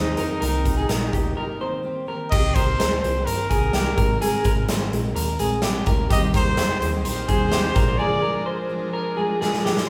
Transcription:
Already playing: picked electric bass D#2, steel-string acoustic guitar D#3 A#3 C4 G4, trumpet D#4, clean electric guitar C5
0.16 picked electric bass F2, steel-string acoustic guitar D#3 A#3 C4 G4, clean electric guitar A#4, closed hi-hat
0.41 picked electric bass C2, steel-string acoustic guitar C3 D#3 A#3 C4 G4, clean electric guitar A#4, closed hi-hat
0.65 kick, closed hi-hat
0.76 steel-string acoustic guitar A#3 C4 G4, clean electric guitar G#4
0.89 picked electric bass A#1, clean electric guitar A#4, snare, closed hi-hat
1.00 steel-string acoustic guitar A#3 C4 G4
1.13 picked electric bass D2, clean electric guitar G4, kick, closed hi-hat
1.37 clean electric guitar A#4
1.61 steel-string acoustic guitar D#3 A#3 C4 G4, clean electric guitar C5
1.83 steel-string acoustic guitar D#3 A#3 C4 G4
2.07 steel-string acoustic guitar D#3 A#3 C4 G4, clean electric guitar A#4
2.31 picked electric bass C2, steel-string acoustic guitar C3 D#3 A#3 C4 G4, clean electric guitar G4, trumpet D#5, kick, crash
2.55 picked electric bass C2, steel-string acoustic guitar D#3 A#3 C4, clean electric guitar A#4, trumpet C5, kick, closed hi-hat
2.80 picked electric bass D2, clean electric guitar C5, snare, closed hi-hat
3.01 picked electric bass C2, steel-string acoustic guitar D#3 A#3 C4 G4, trumpet C5, closed hi-hat
3.25 picked electric bass G1, trumpet A#4, clean electric guitar A#4, closed hi-hat
3.49 picked electric bass C2, steel-string acoustic guitar D#3 A#3 C4 G4, clean electric guitar G#4, kick, closed hi-hat
3.73 steel-string acoustic guitar D#3 A#3 C4, clean electric guitar G4, snare, closed hi-hat
3.97 picked electric bass G#1, steel-string acoustic guitar G#3 C4 D#4 A#4, clean electric guitar A#4, kick, closed hi-hat
4.20 steel-string acoustic guitar G#3 C4 D#4 A#4, clean electric guitar G#4, trumpet A#4, closed hi-hat
4.44 picked electric bass G#1, steel-string acoustic guitar G#3 C4 D#4 A#4, clean electric guitar A#4, kick, closed hi-hat
4.68 picked electric bass G#1, clean electric guitar C5, snare, closed hi-hat
4.91 picked electric bass A#1, steel-string acoustic guitar G#3 C4 D#4 A#4, closed hi-hat
5.15 picked electric bass D#2, clean electric guitar A#4, closed hi-hat
5.39 picked electric bass A#1, steel-string acoustic guitar G#3 C4 D#4 A#4, clean electric guitar G#4, closed hi-hat
5.62 steel-string acoustic guitar G#3 C4 D#4 A#4, clean electric guitar G4, snare, closed hi-hat
5.86 picked electric bass D2, steel-string acoustic guitar G#3 C4 D#4 A#4, clean electric guitar A#4, kick, closed hi-hat
6.10 picked electric bass D#2, steel-string acoustic guitar D#3 G3 A#3 C4 G4, transistor combo organ D#4 G4 C5, clean electric guitar G4, trumpet D#5, kick, closed hi-hat
6.34 picked electric bass D#2, steel-string acoustic guitar G3 A#3 C4 G4, clean electric guitar A#4, trumpet C5, kick, snare, closed hi-hat
6.57 picked electric bass F2, clean electric guitar C5, snare, closed hi-hat
6.81 picked electric bass D#2, steel-string acoustic guitar G3 A#3 C4 G4, trumpet C5, closed hi-hat
7.04 picked electric bass A#1, clean electric guitar A#4, trumpet C5, closed hi-hat
7.28 picked electric bass D#2, steel-string acoustic guitar G3 A#3 C4 G4, clean electric guitar G#4, kick, closed hi-hat
7.52 steel-string acoustic guitar A#3 C4 G4, clean electric guitar G4, snare, closed hi-hat
7.75 picked electric bass A#1, steel-string acoustic guitar F3 G#3 D4 F4, transistor combo organ D4 G#4 A#4, clean electric guitar A#4, kick, closed hi-hat
7.98 steel-string acoustic guitar A#2 D3 F3 G#3 D4 F4, clean electric guitar G#4, trumpet D5
8.22 steel-string acoustic guitar F3 G#3 D4 F4, clean electric guitar A#4
8.46 clean electric guitar C5
8.69 steel-string acoustic guitar F3 G#3 D4 F4
8.93 clean electric guitar A#4
9.17 steel-string acoustic guitar F3 G#3 D4 F4, clean electric guitar G#4
9.41 steel-string acoustic guitar F3 G#3 D4 F4, clean electric guitar G#4, snare
9.54 snare
9.64 steel-string acoustic guitar F3 G#3 D4 F4, clean electric guitar G4, snare
9.77 snare

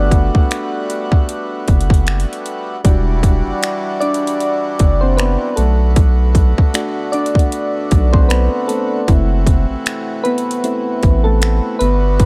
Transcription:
Already playing: sub bass G1, accordion G3 A3 B3 F#4, synth keys A3 B3 D4 F#4 D5 F#5
0.11 kick, closed hi-hat
0.35 sub bass F#1, kick
0.51 finger snap, closed hi-hat
0.90 closed hi-hat
1.12 kick
1.29 closed hi-hat
1.68 sub bass F#1, kick, closed hi-hat
1.81 closed hi-hat
1.90 kick, closed hi-hat
2.07 finger snap, closed hi-hat
2.20 closed hi-hat
2.33 closed hi-hat
2.46 closed hi-hat
2.84 sub bass E1, accordion E3 G3 D4 F#4, synth keys G3 D4 F#4, kick, closed hi-hat
3.23 kick, closed hi-hat
3.47 sub bass F#1
3.63 finger snap, closed hi-hat
4.00 synth keys D4 D5, closed hi-hat
4.14 closed hi-hat
4.27 closed hi-hat
4.40 closed hi-hat
4.79 sub bass F#1, kick, closed hi-hat
5.01 synth keys C4 C5
5.17 synth keys B3 B4, finger snap, closed hi-hat
5.56 sub bass B1, accordion D3 A3 B3, synth keys A3 A4, closed hi-hat
5.96 kick, closed hi-hat
6.35 kick, closed hi-hat
6.58 sub bass B1, kick
6.74 synth keys A3 D4 F#4, finger snap, closed hi-hat
7.12 synth keys D4 D5, closed hi-hat
7.26 closed hi-hat
7.35 kick
7.39 closed hi-hat
7.52 closed hi-hat
7.91 sub bass B1, kick, closed hi-hat
8.13 synth keys C4 C5, kick
8.29 synth keys B3 B4, finger snap, closed hi-hat
8.68 synth keys A3 A4, closed hi-hat
9.08 sub bass F#1, accordion C3 E3 A3, synth keys A3 C4 E4, kick, closed hi-hat
9.47 kick, closed hi-hat
9.70 sub bass A1
9.86 finger snap, closed hi-hat
10.24 synth keys B3 B4, closed hi-hat
10.38 closed hi-hat
10.51 closed hi-hat
10.64 synth keys A3 C4 E4, closed hi-hat
11.03 sub bass A1, kick, closed hi-hat
11.24 synth keys A3 A4
11.42 finger snap, closed hi-hat
11.79 sub bass G1, accordion G3 B3 F#4, synth keys B3 B4, closed hi-hat
12.20 kick, closed hi-hat

